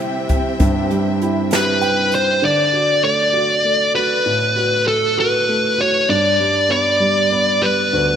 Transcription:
Already playing: grand piano C3 G3 E4 G4, string section C3 C4 E5 G5
0.29 kick, closed hi-hat
0.60 grand piano G2, kick, closed hi-hat
0.90 grand piano G3, closed hi-hat
1.22 grand piano E4, closed hi-hat
1.51 grand piano G4, snare, closed hi-hat
1.55 lead electric guitar B4
1.81 grand piano G5, closed hi-hat
2.12 lead electric guitar C5, closed hi-hat
2.42 grand piano D3, lead electric guitar D5
2.73 grand piano F#4
3.03 grand piano A3, lead electric guitar D5
3.33 grand piano F#4
3.64 grand piano A3
3.95 grand piano F#4, lead electric guitar B4
4.26 grand piano A2
4.56 grand piano F#4
4.87 grand piano A3, lead electric guitar A4
5.17 grand piano F#4, lead electric guitar B4
5.49 grand piano A3
5.78 grand piano F#4, lead electric guitar C#5
6.09 grand piano G2, lead electric guitar D5
6.40 grand piano G3
6.69 grand piano B3, lead electric guitar D5
7.00 grand piano G3
7.31 grand piano B3
7.62 grand piano G3, lead electric guitar B4
7.93 grand piano D2

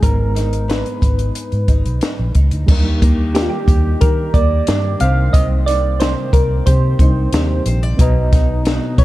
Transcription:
Already playing: nylon-string guitar B3 D#4
0.01 fingered electric bass G#1, nylon-string guitar G#2, reed electric piano G#3 B3 D#4, synth keys A#4, kick, closed hi-hat
0.06 reed electric piano A#5
0.35 nylon-string guitar D#4, snare, closed hi-hat
0.53 closed hi-hat
0.68 nylon-string guitar B3, synth keys B4, snare, closed hi-hat
0.86 closed hi-hat
1.01 fingered electric bass G#1, nylon-string guitar D#4, kick, closed hi-hat
1.19 closed hi-hat
1.35 closed hi-hat
1.52 fingered electric bass G#2, closed hi-hat
1.68 fingered electric bass G#1, nylon-string guitar D#4, kick, closed hi-hat
1.86 fingered electric bass B1, closed hi-hat
2.01 snare, closed hi-hat
2.19 fingered electric bass A#1
2.35 fingered electric bass C#2, nylon-string guitar D#4, kick, closed hi-hat
2.51 fingered electric bass D2, closed hi-hat
2.66 fingered electric bass D#2, nylon-string guitar D#3, brass ensemble D#3 A#3 G4, reed electric piano G3 A#3 D4 D#4, kick, crash
2.72 reed electric piano A#4
3.02 nylon-string guitar A#3, kick, closed hi-hat
3.35 nylon-string guitar D4, synth keys G4, snare, closed hi-hat
3.42 synth keys F4
3.50 synth keys G4
3.67 fingered electric bass D#2, nylon-string guitar G4, kick, closed hi-hat
4.01 fingered electric bass D#3, nylon-string guitar D4, synth keys A#4, kick, closed hi-hat
4.34 fingered electric bass D#2, nylon-string guitar A#3, synth keys D5, kick, closed hi-hat
4.67 fingered electric bass G2, nylon-string guitar D4, snare, closed hi-hat
4.99 fingered electric bass C2, nylon-string guitar C3, reed electric piano G3 C4 D#4, brass ensemble C4, synth keys F5, closed hi-hat
5.04 reed electric piano C5
5.33 fingered electric bass C2, nylon-string guitar C3, synth keys D#5, kick, closed hi-hat
5.66 nylon-string guitar D#4, synth keys D5, snare, closed hi-hat
6.00 nylon-string guitar G4, synth keys C5, snare, closed hi-hat
6.33 fingered electric bass C2, synth keys A#4, nylon-string guitar D5, kick, closed hi-hat
6.66 fingered electric bass C3, nylon-string guitar G4, synth keys C5, kick, closed hi-hat
6.99 fingered electric bass C2, reed electric piano G3 C4 D4 D#4 C5, nylon-string guitar D#4, kick, closed hi-hat
7.33 fingered electric bass D#2, nylon-string guitar G4, snare, closed hi-hat
7.66 fingered electric bass A#1, nylon-string guitar C5, closed hi-hat
7.83 nylon-string guitar D5
7.97 fingered electric bass B1, nylon-string guitar B2, brass ensemble F#3 B3 D#4, reed electric piano B3 D#4 F#4 A#5, kick, closed hi-hat
8.02 reed electric piano D#5
8.33 nylon-string guitar D#4, kick, snare, closed hi-hat
8.65 nylon-string guitar F#4, snare, closed hi-hat
8.98 fingered electric bass B1, nylon-string guitar B4, synth keys C#5, kick, closed hi-hat

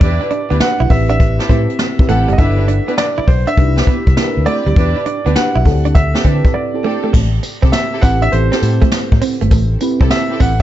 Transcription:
Already playing: grand piano D5
0.01 fingered electric bass E2, string section D4 E4 G4 B4, kick, closed hi-hat
0.21 muted clean electric guitar stroke
0.30 clean electric guitar D4, closed hi-hat
0.50 fingered electric bass D2, clean electric guitar B3, string section D4 E4 G4 B4, closed hi-hat
0.60 fm electric piano D4 F#4 G4 B4, grand piano F#5, muted fingered electric bass stroke, snare, closed hi-hat
0.80 fingered electric bass B1, clean electric guitar E4
0.90 fingered electric bass A1, fm electric piano C4 E4 G4 B4, grand piano E5, muted clean electric guitar stroke, kick, open hi-hat
1.09 clean electric guitar D4, grand piano E5, closed hi-hat
1.20 kick, closed hi-hat
1.39 string section C4 E4 G4 A4, snare
1.49 fingered electric bass A2, clean electric guitar C4, fm electric piano C4 E4 G4 B4, kick, closed hi-hat
1.70 closed hi-hat
1.79 muted clean electric guitar stroke, snare, closed hi-hat
1.99 fm electric piano C4 E4 G4 B4, kick
2.08 fingered electric bass A1, clean electric guitar A3, string section C4 E4 G4 A4, grand piano F#5, closed hi-hat
2.28 fingered electric bass F#1, clean electric guitar G3, closed hi-hat
2.33 grand piano D#5
2.38 fingered electric bass G1, string section D4 E4 G4 B4, fm electric piano D4 E4 A4 B4, grand piano E5, kick, closed hi-hat
2.59 muted clean electric guitar stroke
2.68 clean electric guitar D4, closed hi-hat
2.88 clean electric guitar B3, string section D4 E4 G4 B4, closed hi-hat
2.98 grand piano D5, snare, closed hi-hat
3.18 clean electric guitar E4, muted fingered electric bass stroke
3.27 fingered electric bass B1, grand piano C5, muted clean electric guitar stroke, kick, open hi-hat
3.47 clean electric guitar D4, grand piano E5, closed hi-hat
3.57 fingered electric bass C2, fm electric piano D4 D#4 G4 B4, kick, closed hi-hat
3.64 fm electric piano E4
3.76 string section C4 E4 G4 B4, snare
3.87 clean electric guitar B3, muted fingered electric bass stroke, kick, closed hi-hat
4.07 fingered electric bass C2, kick, closed hi-hat
4.17 fm electric piano D4 E4 G4 A#4, muted clean electric guitar stroke, muted fingered electric bass stroke, snare, closed hi-hat
4.24 fm electric piano B4
4.37 fingered electric bass D2
4.46 clean electric guitar A3, string section C4 E4 G4 B4, grand piano D5, closed hi-hat
4.66 fingered electric bass D2, clean electric guitar G3, closed hi-hat
4.76 fingered electric bass E2, string section D4 E4 G4 B4, kick, closed hi-hat
4.96 muted clean electric guitar stroke
5.06 clean electric guitar D4, closed hi-hat
5.25 fingered electric bass D2, clean electric guitar B3, string section D4 E4 G4 B4, closed hi-hat
5.35 fm electric piano D4 F#4 G4 B4, grand piano F#5, muted fingered electric bass stroke, snare, closed hi-hat
5.55 fingered electric bass B1, clean electric guitar E4
5.65 fingered electric bass D2, fm electric piano C4 E4 F#4 A4, muted clean electric guitar stroke, kick, open hi-hat
5.72 fm electric piano G4
5.85 clean electric guitar D4, closed hi-hat
5.95 grand piano E5, kick, closed hi-hat
6.14 string section C4 D4 G4 A4, snare
6.24 fingered electric bass D3, fm electric piano C4 E4 G4 B4, clean electric guitar C4, kick, closed hi-hat
6.45 kick, closed hi-hat
6.54 grand piano D5, muted clean electric guitar stroke
6.74 fm electric piano C4 E4 G4 A4
6.84 clean electric guitar A3, string section C4 D4 G4 A4
7.04 clean electric guitar A3
7.13 fingered electric bass A1, clean electric guitar A3, kick, crash, tambourine
7.43 muted clean electric guitar stroke, closed hi-hat, tambourine
7.62 fingered electric bass C2, clean electric guitar C4, string section C4 E4 G4 A4, kick, closed hi-hat
7.72 grand piano E5, muted clean electric guitar stroke, snare, closed hi-hat, tambourine
7.93 string section C4 E4 G4 A4
8.02 fingered electric bass A1, clean electric guitar C4, fm electric piano C4 E4 G4 B4, grand piano F#5, kick, open hi-hat, tambourine
8.22 clean electric guitar D4, grand piano E5, closed hi-hat
8.32 fingered electric bass A1, fm electric piano C4 E4 G4 A4, grand piano C5, closed hi-hat
8.52 string section C4 E4 G4 A4, clean electric guitar C4, snare
8.62 fingered electric bass A2, fm electric piano C4 E4 G4 C5, muted clean electric guitar stroke, closed hi-hat, tambourine
8.82 clean electric guitar A3, kick, closed hi-hat
8.92 muted clean electric guitar stroke, snare, closed hi-hat, tambourine
9.12 fingered electric bass A2, kick
9.22 clean electric guitar C4, open hi-hat, tambourine
9.41 fingered electric bass G1, clean electric guitar A3, closed hi-hat
9.51 fingered electric bass A1, clean electric guitar A3, kick, closed hi-hat, tambourine
9.81 fm electric piano C4 E4 G4 B4, muted clean electric guitar stroke, closed hi-hat, tambourine
10.01 fingered electric bass C2, string section C4 E4 G4 A4, clean electric guitar C4, kick, closed hi-hat
10.10 grand piano E5, muted clean electric guitar stroke, snare, closed hi-hat, tambourine
10.30 string section C4 E4 G4 A4
10.40 fingered electric bass A1, clean electric guitar C4, grand piano F#5, kick, open hi-hat, tambourine

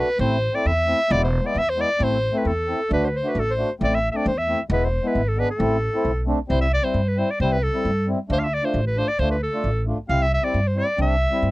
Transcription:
0.00 clarinet B4
0.18 upright bass A1, accordion A3 C4 E4, clarinet C5
0.53 accordion A3 C4 E4, clarinet D5
0.66 upright bass E2, clarinet E5
0.86 accordion A3 C4 E4
1.09 upright bass E1, accordion G#3 B3 E4, clarinet D5
1.24 clarinet C5
1.42 accordion G#3 B3 E4, clarinet D5
1.55 upright bass E2, clarinet E5
1.70 clarinet C5
1.77 accordion G#3 B3 E4
1.81 clarinet D5
1.99 upright bass A1, accordion A3 C4 E4
2.03 clarinet C5
2.32 accordion A3 C4 E4
2.37 clarinet B4
2.45 upright bass E2, clarinet A4
2.67 accordion A3 C4 E4
2.90 upright bass D2, accordion A3 D4 F#4, clarinet B4
3.04 clarinet B4 C5
3.15 clarinet C5
3.23 accordion A3 D4 F#4, clarinet B4
3.35 upright bass A1
3.40 clarinet A4
3.50 clarinet C5
3.57 accordion A3 D4 F#4
3.80 upright bass A1, accordion A3 C4 E4, clarinet D5
3.95 clarinet E5
4.12 accordion A3 C4 D4, clarinet E5
4.17 clarinet D5
4.26 upright bass E2, clarinet C5
4.38 clarinet E5
4.48 accordion A3 C4 E4
4.70 upright bass E1, accordion G#3 B3 E4, clarinet B4
4.84 clarinet C5
5.03 accordion G#3 B3 E4
5.07 clarinet B4
5.15 upright bass G#1
5.28 clarinet A4
5.37 accordion G#3 B3 D4, clarinet B4
5.50 clarinet A4
5.58 upright bass A1, accordion A3 C4 E4
5.94 accordion A3 C4 E4
6.05 upright bass B1
6.26 accordion A3 C4 D4
6.48 upright bass C2, accordion G3 C4 E4, clarinet C5
6.61 clarinet E5
6.73 clarinet D5
6.82 accordion G3 C4 E4, clarinet C5
6.94 upright bass G2
7.08 clarinet B4
7.17 accordion G3 C4 E4, clarinet C5
7.30 clarinet D5
7.40 upright bass C2, accordion G3 C4 E4, clarinet C5
7.52 clarinet B4
7.63 clarinet A4
7.73 accordion G3 C4 E4
7.85 upright bass G2
8.07 accordion G3 C4 E4
8.29 upright bass D2, accordion A3 D4 F4, clarinet C5
8.39 clarinet F5
8.44 clarinet E5
8.54 clarinet D5
8.62 accordion A3 D4 F4, clarinet C5
8.74 upright bass A1
8.87 clarinet B4
8.97 accordion A3 D4 F4, clarinet C5
9.08 clarinet D5
9.19 upright bass D2, accordion A3 D4 F4, clarinet C5
9.31 clarinet B4
9.43 clarinet A4
9.53 accordion A3 D4 F4
9.64 upright bass A1
9.86 accordion A3 D4 F4
10.08 upright bass C2, accordion G3 C4 E4, clarinet F5
10.22 clarinet E5
10.34 clarinet E5
10.42 accordion G3 C4 E4, clarinet D5
10.54 upright bass G2
10.67 clarinet C5
10.75 accordion G3 C4 E4, clarinet D5
10.97 upright bass C2, accordion G3 C4 D4
11.02 clarinet E5
11.31 accordion G3 C4 E4
11.42 upright bass G2

